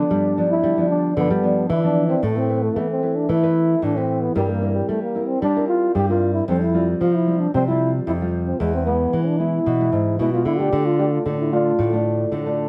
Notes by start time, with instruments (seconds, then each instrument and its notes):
Already playing: nylon-string guitar F3 B3 D4, trombone D4
0.11 nylon-string guitar G2 G3
0.37 nylon-string guitar F3 B3 D4
0.49 trombone E4
0.63 nylon-string guitar D3 G3
0.77 nylon-string guitar F3 B3 D4
0.90 trombone D4
1.17 nylon-string guitar G2 D3 F3 B3 D4, trombone B3
1.30 nylon-string guitar G3
1.43 nylon-string guitar F3 B3 D4
1.70 nylon-string guitar D3 E3, trombone E4
1.84 nylon-string guitar F3 B3 D4, trombone D4
2.08 trombone C4, nylon-string guitar C4 E4 B4
2.23 nylon-string guitar A2 A3, trombone A3
2.37 nylon-string guitar C4 E4 B4, trombone C4
2.49 nylon-string guitar C4 E4 B4
2.63 trombone A3
2.76 nylon-string guitar E3 A3, trombone B3
2.90 trombone C4
3.02 nylon-string guitar C4 E4 B4
3.16 trombone D4
3.29 nylon-string guitar E3 A3 C4 E4 B4, trombone E4
3.42 nylon-string guitar C4 E4 B4
3.82 nylon-string guitar A2 E3, trombone D4
3.96 nylon-string guitar C4 E4 B4, trombone C4
4.21 trombone B3
4.35 nylon-string guitar G2 G3 C4 E4 A#4, trombone G3
4.49 trombone A#3
4.62 nylon-string guitar C4 E4 A#4
4.73 trombone G3
4.89 nylon-string guitar G3, trombone A3
5.02 trombone A#3
5.15 nylon-string guitar C4 E4 A#4
5.27 trombone C4
5.42 nylon-string guitar G3, trombone D4
5.56 nylon-string guitar C4 E4 A#4
5.68 trombone F4
5.95 nylon-string guitar G2 G3, trombone G4
6.09 nylon-string guitar C4 E4 A#4, trombone F4
6.33 trombone E4
6.48 nylon-string guitar F2 F3 G3 C4 F4, trombone C4
6.62 trombone E4
6.74 nylon-string guitar G3 C4 F4
7.01 nylon-string guitar C3 F3, trombone F4
7.15 trombone E4
7.27 nylon-string guitar G3 C4 F4
7.39 trombone D4
7.54 nylon-string guitar C3 F3 G3 C4 F4, trombone C4
7.67 nylon-string guitar G3 C4 F4, trombone E4
8.07 nylon-string guitar F2 C3, trombone E4
8.21 nylon-string guitar G3 C4 F4
8.46 trombone C4
8.60 nylon-string guitar E2 E3 G#3 B3 E4, trombone G#3
8.74 trombone C4
8.86 nylon-string guitar G#3 B3 E4, trombone B3
9.13 nylon-string guitar B2 E3
9.27 trombone D4
9.39 nylon-string guitar G#3 B3 E4, trombone E4
9.66 nylon-string guitar B2 E3
9.80 nylon-string guitar G#3 B3 E4
9.92 nylon-string guitar G#2
10.19 nylon-string guitar B2 G#3 B3 E4, trombone E4
10.33 nylon-string guitar G#3 B3 E4, trombone F4
10.45 nylon-string guitar D3, trombone E4
10.58 nylon-string guitar A3 D4 F4, trombone G4
10.73 nylon-string guitar D3
10.86 trombone F4
10.98 nylon-string guitar A3 D4 F4, trombone G4
11.11 trombone F4
11.26 nylon-string guitar A2 D3, trombone D4
11.40 trombone E4
11.52 nylon-string guitar A3 D4 F4, trombone F4
11.79 nylon-string guitar A2 D3
11.92 nylon-string guitar A3 D4 F4
12.32 nylon-string guitar A2 D3
12.46 nylon-string guitar A3 D4 F4